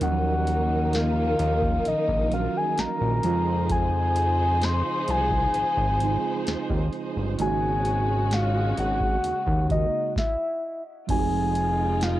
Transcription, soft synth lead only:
0, 0, Header, 1, 2, 480
1, 0, Start_track
1, 0, Key_signature, -5, "major"
1, 0, Tempo, 923077
1, 4, Time_signature, 4, 2, 24, 8
1, 6342, End_track
2, 0, Start_track
2, 0, Title_t, "Soft synth lead"
2, 0, Program_c, 0, 80
2, 13, Note_on_c, 0, 78, 105
2, 494, Note_on_c, 0, 77, 100
2, 501, Note_off_c, 0, 78, 0
2, 975, Note_on_c, 0, 75, 109
2, 983, Note_off_c, 0, 77, 0
2, 1209, Note_off_c, 0, 75, 0
2, 1216, Note_on_c, 0, 77, 101
2, 1336, Note_on_c, 0, 80, 99
2, 1344, Note_off_c, 0, 77, 0
2, 1453, Note_on_c, 0, 82, 105
2, 1461, Note_off_c, 0, 80, 0
2, 1928, Note_off_c, 0, 82, 0
2, 1932, Note_on_c, 0, 80, 117
2, 2413, Note_on_c, 0, 84, 117
2, 2421, Note_off_c, 0, 80, 0
2, 2653, Note_on_c, 0, 80, 105
2, 2661, Note_off_c, 0, 84, 0
2, 3608, Note_off_c, 0, 80, 0
2, 3855, Note_on_c, 0, 80, 126
2, 4334, Note_on_c, 0, 77, 107
2, 4342, Note_off_c, 0, 80, 0
2, 4569, Note_off_c, 0, 77, 0
2, 4574, Note_on_c, 0, 78, 114
2, 5028, Note_off_c, 0, 78, 0
2, 5052, Note_on_c, 0, 75, 92
2, 5271, Note_off_c, 0, 75, 0
2, 5297, Note_on_c, 0, 76, 81
2, 5629, Note_off_c, 0, 76, 0
2, 5774, Note_on_c, 0, 80, 104
2, 6255, Note_on_c, 0, 77, 100
2, 6263, Note_off_c, 0, 80, 0
2, 6342, Note_off_c, 0, 77, 0
2, 6342, End_track
0, 0, End_of_file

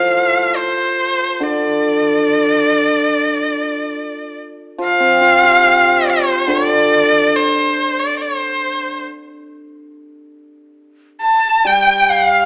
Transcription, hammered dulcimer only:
0, 0, Header, 1, 2, 480
1, 0, Start_track
1, 0, Tempo, 847458
1, 802, Time_signature, 4, 2, 24, 8
1, 4639, Tempo, 868307
1, 6996, End_track
2, 0, Start_track
2, 0, Title_t, "Hammered dulcimer"
2, 0, Program_c, 0, 15
2, 0, Note_on_c, 0, 45, 42
2, 0, Note_on_c, 0, 53, 45
2, 319, Note_off_c, 0, 45, 0
2, 794, Note_on_c, 0, 50, 47
2, 1276, Note_off_c, 0, 53, 0
2, 2237, Note_off_c, 0, 50, 0
2, 2710, Note_on_c, 0, 53, 46
2, 2832, Note_on_c, 0, 60, 40
2, 2951, Note_on_c, 0, 65, 38
2, 3077, Note_on_c, 0, 67, 40
2, 3194, Note_on_c, 0, 72, 38
2, 3665, Note_on_c, 0, 50, 52
2, 3791, Note_off_c, 0, 60, 0
2, 3910, Note_off_c, 0, 65, 0
2, 4033, Note_off_c, 0, 67, 0
2, 4150, Note_off_c, 0, 53, 0
2, 4153, Note_off_c, 0, 72, 0
2, 5107, Note_off_c, 0, 50, 0
2, 6549, Note_on_c, 0, 55, 48
2, 6996, Note_off_c, 0, 55, 0
2, 6996, End_track
0, 0, End_of_file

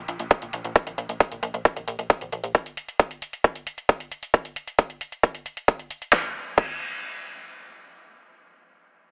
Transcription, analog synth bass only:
0, 0, Header, 1, 2, 480
1, 0, Start_track
1, 0, Tempo, 447761
1, 809, Time_signature, 4, 2, 24, 8
1, 9769, End_track
2, 0, Start_track
2, 0, Title_t, "Analog synth bass"
2, 0, Program_c, 0, 38
2, 90, Note_on_c, 0, 34, 98
2, 190, Note_off_c, 0, 34, 0
2, 211, Note_on_c, 0, 34, 85
2, 310, Note_off_c, 0, 34, 0
2, 450, Note_on_c, 0, 34, 83
2, 550, Note_off_c, 0, 34, 0
2, 570, Note_on_c, 0, 34, 98
2, 670, Note_off_c, 0, 34, 0
2, 690, Note_on_c, 0, 34, 89
2, 790, Note_off_c, 0, 34, 0
2, 930, Note_on_c, 0, 34, 84
2, 1030, Note_off_c, 0, 34, 0
2, 1049, Note_on_c, 0, 34, 98
2, 1150, Note_off_c, 0, 34, 0
2, 1170, Note_on_c, 0, 34, 85
2, 1270, Note_off_c, 0, 34, 0
2, 1409, Note_on_c, 0, 34, 82
2, 1510, Note_off_c, 0, 34, 0
2, 1529, Note_on_c, 0, 34, 104
2, 1629, Note_off_c, 0, 34, 0
2, 1650, Note_on_c, 0, 34, 89
2, 1750, Note_off_c, 0, 34, 0
2, 1890, Note_on_c, 0, 34, 83
2, 1990, Note_off_c, 0, 34, 0
2, 2010, Note_on_c, 0, 34, 97
2, 2110, Note_off_c, 0, 34, 0
2, 2130, Note_on_c, 0, 34, 85
2, 2230, Note_off_c, 0, 34, 0
2, 2370, Note_on_c, 0, 34, 83
2, 2470, Note_off_c, 0, 34, 0
2, 2490, Note_on_c, 0, 34, 94
2, 2590, Note_off_c, 0, 34, 0
2, 2610, Note_on_c, 0, 34, 88
2, 2710, Note_off_c, 0, 34, 0
2, 9769, End_track
0, 0, End_of_file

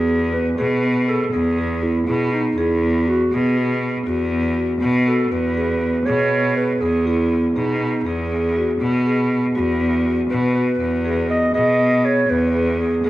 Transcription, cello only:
0, 0, Header, 1, 2, 480
1, 0, Start_track
1, 0, Key_signature, 4, "major"
1, 0, Tempo, 498339
1, 2481, Time_signature, 11, 3, 24, 8
1, 12616, End_track
2, 0, Start_track
2, 0, Title_t, "Cello"
2, 0, Program_c, 0, 42
2, 0, Note_on_c, 0, 40, 73
2, 468, Note_off_c, 0, 40, 0
2, 560, Note_on_c, 0, 47, 68
2, 1190, Note_off_c, 0, 47, 0
2, 1277, Note_on_c, 0, 40, 76
2, 1909, Note_off_c, 0, 40, 0
2, 1992, Note_on_c, 0, 47, 69
2, 2416, Note_off_c, 0, 47, 0
2, 2471, Note_on_c, 0, 40, 72
2, 3106, Note_off_c, 0, 40, 0
2, 3193, Note_on_c, 0, 47, 67
2, 3828, Note_off_c, 0, 47, 0
2, 3912, Note_on_c, 0, 40, 83
2, 4547, Note_off_c, 0, 40, 0
2, 4631, Note_on_c, 0, 47, 72
2, 5057, Note_off_c, 0, 47, 0
2, 5118, Note_on_c, 0, 40, 72
2, 5751, Note_off_c, 0, 40, 0
2, 5837, Note_on_c, 0, 47, 69
2, 6470, Note_off_c, 0, 47, 0
2, 6557, Note_on_c, 0, 40, 75
2, 7190, Note_off_c, 0, 40, 0
2, 7279, Note_on_c, 0, 47, 66
2, 7701, Note_off_c, 0, 47, 0
2, 7755, Note_on_c, 0, 40, 69
2, 8389, Note_off_c, 0, 40, 0
2, 8479, Note_on_c, 0, 47, 68
2, 9111, Note_off_c, 0, 47, 0
2, 9196, Note_on_c, 0, 40, 77
2, 9829, Note_off_c, 0, 40, 0
2, 9921, Note_on_c, 0, 47, 66
2, 10342, Note_off_c, 0, 47, 0
2, 10399, Note_on_c, 0, 40, 70
2, 11030, Note_off_c, 0, 40, 0
2, 11119, Note_on_c, 0, 47, 65
2, 11750, Note_off_c, 0, 47, 0
2, 11839, Note_on_c, 0, 40, 75
2, 12469, Note_off_c, 0, 40, 0
2, 12559, Note_on_c, 0, 47, 69
2, 12616, Note_off_c, 0, 47, 0
2, 12616, End_track
0, 0, End_of_file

